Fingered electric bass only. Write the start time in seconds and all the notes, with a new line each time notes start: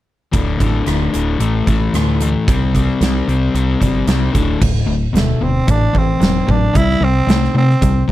0.33 D1
0.60 A1
0.86 D1
1.14 D1
1.40 A1
1.67 A1
1.93 D2
2.48 C2
3.00 C2
3.28 C2
3.54 C2
3.81 G1
4.07 C2
4.34 D1
4.62 D1
4.86 D1
5.12 D1
5.40 D1
5.68 A1
5.95 A1
6.21 E1
6.49 A1
6.75 C2
7.00 C2
7.27 C2
7.54 C3
7.82 C2
8.09 G1